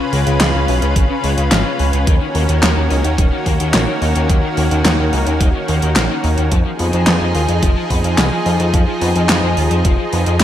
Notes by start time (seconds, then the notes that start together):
Already playing: C#3 C#4 F4 B4
0.12 C#2 G#3, open hi-hat
0.26 C#2 C#3, closed hi-hat
0.40 C#2 G#3, snare, clap, closed hi-hat
0.54 C#2 C#3
0.68 B1 C#4, open hi-hat
0.82 C#2 C#3, closed hi-hat
0.96 G#1 C#3, kick, closed hi-hat
1.09 C#3
1.24 C#2 G#3, open hi-hat
1.38 C#2 C#3, closed hi-hat
1.52 G#1 G#3, snare, clap, closed hi-hat
1.65 C#3
1.79 C#2 C#4, open hi-hat
1.93 C#2 C#3, closed hi-hat
2.07 D#2 D#3 A#3 F#4, kick, closed hi-hat
2.21 D#3
2.35 D#2 A#3, open hi-hat
2.49 D#2 D#3, closed hi-hat
2.62 D#2 A#3, snare, clap, closed hi-hat
2.76 D#2 D#3
2.90 C#2 D#4, open hi-hat
3.04 D#2 D#3, closed hi-hat
3.18 D#1 D#3, kick, closed hi-hat
3.32 D#3
3.46 D#2 A#3, kick, open hi-hat
3.60 D#2 D#3, closed hi-hat
3.74 A#1 A#3, snare, clap, closed hi-hat
3.88 D#3
4.02 D#2 D#4, open hi-hat
4.16 D#2 D#3, closed hi-hat
4.29 D#2 D#3, kick, closed hi-hat
4.43 D#3
4.57 D#2 A#3, open hi-hat
4.71 D#2 D#3, closed hi-hat
4.85 D#2 A#3, snare, clap, closed hi-hat
4.99 D#2 D#3
5.13 C#2 D#4, open hi-hat
5.27 D#2 D#3, closed hi-hat
5.40 D#1 D#3, kick, closed hi-hat
5.54 D#3
5.68 D#2 A#3, open hi-hat
5.82 D#2 D#3, closed hi-hat
5.96 A#1 A#3, snare, clap, closed hi-hat
6.10 D#3
6.24 D#2 D#4, open hi-hat
6.38 D#2 D#3, closed hi-hat
6.51 F2 F3 D#4 G#4, kick, closed hi-hat
6.65 F3
6.79 F2 B3, open hi-hat
6.93 F2 F3, closed hi-hat
7.07 F2 B3, snare, clap, closed hi-hat
7.21 F2 F3
7.35 D#2 F4, open hi-hat
7.49 F2 F3, closed hi-hat
7.63 F1 F3, kick, closed hi-hat
7.76 F3
7.90 F2 B3, kick, open hi-hat
8.04 F2 F3, closed hi-hat
8.18 C2 B3, snare, clap, closed hi-hat
8.32 F3
8.46 F2 F4, open hi-hat
8.60 F2 F3, closed hi-hat
8.73 F2 F3, kick, closed hi-hat
8.87 F3
9.01 F2 B3, open hi-hat
9.15 F2 F3, closed hi-hat
9.29 F2 B3, snare, clap, closed hi-hat
9.43 F2 F3
9.57 D#2 F4, open hi-hat
9.71 F2 F3, closed hi-hat
9.85 F1 F3, kick, closed hi-hat
9.98 F3
10.12 F2 B3, open hi-hat
10.26 F2 F3, closed hi-hat
10.40 B3, snare, clap, closed hi-hat